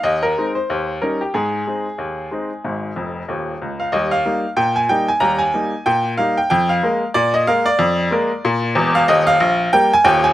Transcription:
X:1
M:2/4
L:1/16
Q:"Swing 16ths" 1/4=93
K:Ab
V:1 name="Upright piano"
e B2 c3 B G | A8- | A4 z3 f | [K:Eb] e f3 g a g a |
b a3 g2 f g | g f3 d e f d- | d6- d f | e f3 g a g a |]
V:2 name="Upright piano" clef=bass
E,,2 [A,CE]2 E,,2 [G,DE]2 | A,,2 [A,CE]2 E,,2 [A,CE]2 | [A,,,A,,]2 [F,,,F,,]2 [E,,,E,,]2 D,,2 | [K:Eb] [E,,G,]2 [G,B,E]2 B,,2 [G,B,E]2 |
[E,,G,]2 [G,B,E]2 B,,2 [G,B,E]2 | F,,2 [A,B,B]2 B,,2 [A,B,B]2 | F,,2 [A,B,B]2 B,,2 [_F,,,_F,,]2 | [E,,,E,,]2 B,,,2 [G,B,B]2 [E,,,E,,]2 |]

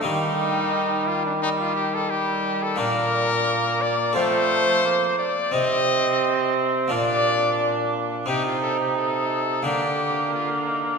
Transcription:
X:1
M:4/4
L:1/16
Q:1/4=88
K:Eblyd
V:1 name="Cornet"
E6 F D E F G A G3 A | B6 d2 c6 d2 | e6 z2 d6 z2 | G F A G A4 G4 F D E D |]
V:2 name="Harpsichord"
[B,EG]16 | [B,DF]8 [CFA]8 | [CE]8 [B,DF]8 | [CE]8 [B,D]8 |]
V:3 name="Harpsichord" clef=bass
E,16 | B,,8 F,6 z2 | C,8 B,,8 | C,8 D,8 |]
V:4 name="Cor anglais"
G,8 G,4 G,4 | B,8 A,4 B,2 z2 | C8 D8 | E8 B,8 |]
V:5 name="Trombone" clef=bass
E,16 | B,,8 F,6 z2 | C,8 B,,8 | C,8 D,8 |]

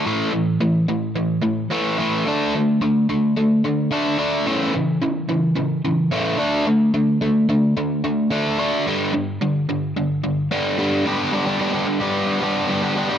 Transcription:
X:1
M:4/4
L:1/16
Q:1/4=109
K:Glyd
V:1 name="Overdriven electric guitar" clef=bass
[A,,E,A,]2 [A,,E,]2 [A,,E,]2 [A,,E,]2 [A,,E,]2 [A,,E,]2 [A,,E,A,]2 [A,,E,A,]2 | [D,A,D]2 [D,A,]2 [D,A,]2 [D,A,]2 [D,A,]2 [D,A,]2 [D,A,D]2 [D,A,D]2 | [C,E,A,]2 [C,E,]2 [C,E,]2 [C,E,]2 [C,E,]2 [C,E,]2 [C,E,A,]2 [D,A,D]2 | [D,A,]2 [D,A,]2 [D,A,]2 [D,A,]2 [D,A,]2 [D,A,]2 [D,A,D]2 [D,A,D]2 |
[G,,D,G,]2 [G,,D,]2 [G,,D,]2 [G,,D,]2 [G,,D,]2 [G,,D,]2 [G,,D,G,]2 [G,,D,G,]2 | [G,,D,G,B,DG]2 [G,B,DG] [G,B,DG] [G,,D,G,B,DG] [G,B,DG]2 [G,B,DG]3 [G,B,DG]2 [G,,D,G,B,DG] [G,B,DG] [G,B,DG] [G,B,DG] |]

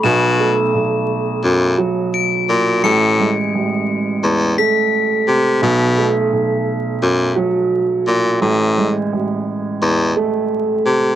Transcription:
X:1
M:4/4
L:1/16
Q:"Swing 16ths" 1/4=86
K:Bdor
V:1 name="Glockenspiel"
e''12 d''2 z2 | c''4- c'' z4 z b'3 z3 | z16 | z16 |]
V:2 name="Baritone saxophone" clef=bass
B,,3 z4 z F,,2 z4 _B,,2 | A,,3 z4 z E,,2 z4 =C,2 | B,,3 z4 z F,,2 z4 _B,,2 | A,,3 z4 z E,,2 z4 =C,2 |]
V:3 name="Grand piano" clef=bass
B,,,2 A,2 B,,,6 F,6 | A,,,2 G,2 A,,,6 A,6 | B,,,2 A,2 B,,,6 F,6 | A,,,2 G,2 A,,,6 A,6 |]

